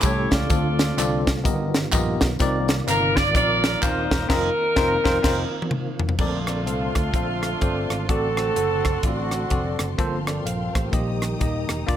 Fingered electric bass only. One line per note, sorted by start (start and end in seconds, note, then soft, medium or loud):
0.03 0.27 C2 medium
0.32 0.48 C#2 medium
0.50 0.90 D2 loud
0.97 1.47 C2 medium
1.45 1.85 G1 medium
1.93 2.17 A#1 loud
2.22 2.37 B1 loud
2.40 2.80 C2 loud
2.87 3.35 G1 medium
3.35 3.75 A#1 medium
3.83 4.07 D#1 loud
4.11 4.27 E1 loud
4.29 4.49 F1 loud
4.77 4.96 F1 loud
5.06 5.18 F1 loud
5.24 5.43 F1 medium
6.19 6.67 A#1 medium
6.67 6.91 C2 medium
6.96 7.14 D2 medium
7.14 7.54 A#1 medium
7.62 7.86 G1 medium
7.90 8.06 G#1 medium
8.09 8.49 A1 medium
8.56 8.97 F#1 medium
9.03 9.44 A1 medium
9.51 9.76 F1 medium
9.79 9.96 F#1 medium
9.99 10.39 G1 medium
10.45 10.70 A#1 medium
10.75 10.91 A1 medium
10.93 11.34 A#1 medium
11.41 11.66 D#1 medium
11.70 11.86 E1 medium
11.88 11.97 F1 medium